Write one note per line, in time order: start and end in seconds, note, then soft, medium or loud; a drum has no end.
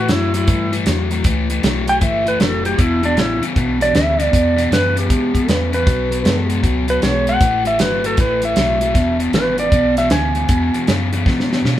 0.00 0.10 F#4 medium
0.08 0.46 F#2 medium
0.08 0.32 A2 medium
0.08 0.32 F#3 medium
0.08 0.34 E4 medium
0.08 snare loud
0.08 closed hi-hat medium
0.34 0.46 A2 medium
0.34 0.47 F#3 medium
0.34 0.72 E4 medium
0.34 closed hi-hat medium
0.47 0.86 G2 medium
0.47 0.70 A2 medium
0.47 0.71 E3 medium
0.47 kick loud
0.47 closed hi-hat medium
0.72 0.85 A2 medium
0.72 0.85 E3 medium
0.72 closed hi-hat medium
0.86 1.24 E2 medium
0.86 1.09 A2 medium
0.86 1.09 F#3 medium
0.86 snare loud
0.86 closed hi-hat medium
1.11 1.24 A2 medium
1.11 1.24 F#3 medium
1.11 closed hi-hat medium
1.24 1.62 C#2 medium
1.24 1.47 A2 medium
1.24 1.48 E3 medium
1.24 kick loud
1.24 closed hi-hat loud
1.50 1.62 A2 medium
1.50 1.63 E3 medium
1.50 closed hi-hat medium
1.63 2.01 B1 medium
1.63 1.86 A2 medium
1.63 1.86 F#3 medium
1.63 snare loud
1.63 closed hi-hat medium
1.88 2.00 A2 medium
1.88 2.01 F#3 medium
1.88 2.02 G5 medium
1.88 closed hi-hat medium
2.01 2.39 G1 medium
2.01 2.24 A2 medium
2.01 2.24 E3 loud
2.01 2.27 E5 medium
2.01 kick loud
2.01 closed hi-hat medium
2.26 2.39 A2 medium
2.26 2.39 E3 medium
2.26 2.41 B4 medium
2.26 closed hi-hat medium
2.40 2.78 F1 medium
2.40 2.62 A2 medium
2.40 2.63 F#3 medium
2.40 2.65 A4 medium
2.40 snare loud
2.40 closed hi-hat medium
2.65 2.78 A2 medium
2.65 2.78 F#3 medium
2.65 2.79 G4 medium
2.65 closed hi-hat medium
2.78 3.16 E1 medium
2.78 3.01 E2 medium
2.78 3.01 B2 loud
2.78 3.04 E4 medium
2.78 kick loud
2.78 closed hi-hat medium
3.03 3.15 E2 medium
3.03 3.16 B2 medium
3.03 3.18 D4 medium
3.03 closed hi-hat medium
3.17 3.40 A1 medium
3.17 3.39 E2 medium
3.17 3.40 C#3 medium
3.17 3.42 E4 loud
3.17 snare loud
3.17 closed hi-hat medium
3.42 3.55 E2 medium
3.42 3.55 C#3 medium
3.42 muted fingered electric bass stroke soft
3.42 closed hi-hat medium
3.56 3.93 B1 medium
3.56 3.78 E2 medium
3.56 3.78 B2 medium
3.56 kick medium
3.56 closed hi-hat medium
3.80 3.93 E2 medium
3.80 3.93 B2 medium
3.80 3.95 D5 medium
3.80 snare soft
3.80 closed hi-hat medium
3.94 4.32 D2 medium
3.94 4.17 E2 medium
3.94 4.17 C#3 medium
3.94 4.21 E5 loud
3.94 snare loud
3.94 closed hi-hat medium
4.19 4.31 E2 medium
4.19 4.32 C#3 medium
4.19 4.71 D5 medium
4.19 closed hi-hat medium
4.32 4.55 E2 medium
4.32 4.71 E2 medium
4.32 4.55 B2 medium
4.32 kick loud
4.32 closed hi-hat medium
4.56 4.70 E2 medium
4.56 4.70 B2 medium
4.56 closed hi-hat medium
4.71 4.93 E2 medium
4.71 5.09 F#2 medium
4.71 4.94 C#3 medium
4.71 4.97 B4 medium
4.71 snare loud
4.71 closed hi-hat medium
4.95 5.08 E2 medium
4.95 5.09 C#3 medium
4.95 5.50 G4 medium
4.95 closed hi-hat medium
5.09 5.32 E2 medium
5.09 5.47 G#2 medium
5.09 5.32 B2 medium
5.09 kick loud
5.09 closed hi-hat medium
5.34 5.47 E2 medium
5.34 5.47 B2 medium
5.34 kick medium
5.34 closed hi-hat medium
5.48 5.71 E2 medium
5.48 5.86 E2 medium
5.48 5.71 C#3 medium
5.48 5.73 B4 medium
5.48 snare loud
5.48 closed hi-hat medium
5.72 5.85 E2 medium
5.72 5.85 C#3 medium
5.72 6.49 B4 medium
5.72 closed hi-hat medium
5.86 6.24 B1 medium
5.86 6.09 B2 medium
5.86 6.09 F#3 medium
5.86 kick loud
5.86 snare soft
5.86 closed hi-hat medium
6.11 6.23 B2 medium
6.11 6.24 F#3 medium
6.11 closed hi-hat medium
6.24 6.62 F#2 medium
6.24 6.47 B2 medium
6.24 6.47 G#3 medium
6.24 snare loud
6.24 closed hi-hat medium
6.49 6.61 B2 medium
6.49 6.63 G#3 medium
6.49 closed hi-hat medium
6.63 7.01 C#2 medium
6.63 6.86 B2 medium
6.63 6.86 F#3 medium
6.63 kick loud
6.63 closed hi-hat medium
6.88 7.01 B2 medium
6.88 7.01 F#3 medium
6.88 7.03 B4 medium
6.88 closed hi-hat medium
7.02 7.40 B1 medium
7.02 7.24 B2 medium
7.02 7.25 G#3 medium
7.02 7.27 C#5 medium
7.02 snare loud
7.02 closed hi-hat medium
7.27 7.40 B2 medium
7.27 7.40 G#3 medium
7.27 7.66 F#5 loud
7.27 closed hi-hat medium
7.41 7.78 A1 medium
7.41 7.63 A2 medium
7.41 7.63 E3 medium
7.41 kick loud
7.41 snare soft
7.41 closed hi-hat medium
7.65 7.78 A2 medium
7.65 7.78 E3 medium
7.65 7.80 E5 medium
7.65 closed hi-hat medium
7.79 8.17 G1 loud
7.79 8.02 A2 medium
7.79 8.02 F#3 loud
7.79 8.04 B4 medium
7.79 snare loud
7.79 closed hi-hat medium
8.04 8.17 A2 medium
8.04 8.17 F#3 medium
8.04 8.19 A4 medium
8.04 closed hi-hat medium
8.17 8.55 A1 medium
8.17 8.40 A2 medium
8.17 8.40 E3 medium
8.17 8.43 B4 medium
8.17 kick loud
8.17 snare soft
8.17 closed hi-hat medium
8.42 8.55 A2 medium
8.42 8.56 E3 medium
8.42 9.19 E5 medium
8.42 closed hi-hat medium
8.56 8.94 B1 medium
8.56 8.79 A2 medium
8.56 8.79 F#3 medium
8.56 snare loud
8.56 closed hi-hat medium
8.81 8.94 A2 medium
8.81 8.94 F#3 medium
8.81 closed hi-hat medium
8.94 9.32 E1 medium
8.94 9.17 E2 medium
8.94 9.17 B2 loud
8.94 kick loud
8.94 snare soft
8.94 closed hi-hat medium
9.19 9.32 E2 medium
9.19 9.32 B2 medium
9.19 closed hi-hat medium
9.33 9.71 G#1 loud
9.33 9.56 E2 medium
9.33 9.56 C#3 medium
9.33 9.58 B4 medium
9.33 snare loud
9.33 closed hi-hat medium
9.58 9.71 E2 medium
9.58 9.71 C#3 medium
9.58 9.96 D5 medium
9.58 closed hi-hat medium
9.72 10.09 B1 medium
9.72 9.94 E2 medium
9.72 9.95 B2 loud
9.72 kick loud
9.72 closed hi-hat medium
9.97 10.09 E2 medium
9.97 10.10 B2 medium
9.97 10.11 E5 medium
9.97 snare soft
9.97 closed hi-hat medium
10.10 10.48 D2 loud
10.10 10.33 E2 medium
10.10 10.33 C#3 medium
10.10 11.23 G#5 loud
10.10 snare loud
10.10 closed hi-hat medium
10.35 10.48 E2 medium
10.35 10.48 C#3 medium
10.35 closed hi-hat medium
10.49 10.72 E2 medium
10.49 10.71 E2 medium
10.49 10.72 B2 medium
10.49 kick loud
10.49 closed hi-hat medium
10.74 10.86 E2 medium
10.74 10.87 B2 medium
10.74 closed hi-hat medium
10.87 11.10 E2 medium
10.87 11.25 F#2 loud
10.87 11.10 C#3 loud
10.87 snare loud
10.87 closed hi-hat medium
11.13 11.25 E2 medium
11.13 11.25 C#3 medium
11.13 closed hi-hat medium
11.26 11.48 E2 medium
11.26 11.63 G#2 medium
11.26 11.49 B2 medium
11.26 kick loud
11.26 snare medium
11.40 snare medium
11.50 11.63 E2 medium
11.50 11.63 B2 medium
11.50 snare medium
11.64 11.79 E2 medium
11.64 11.79 B2 medium
11.64 11.79 C#3 medium
11.64 snare medium